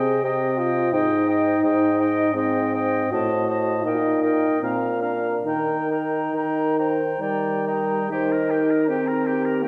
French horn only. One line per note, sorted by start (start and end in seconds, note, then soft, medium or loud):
0.00 0.25 G#4 medium
0.23 0.60 G4 medium
0.59 0.95 F4 medium
0.93 2.36 D#4 medium
2.35 3.13 C4 medium
3.12 3.85 F#4 medium
3.84 4.60 D#4 medium
4.60 5.04 C4 soft
5.02 5.47 D4 soft
5.45 7.03 D#4 soft
7.20 8.12 G3 soft
8.11 8.90 D#4 medium
8.89 9.64 C4 medium
9.62 9.68 A#3 soft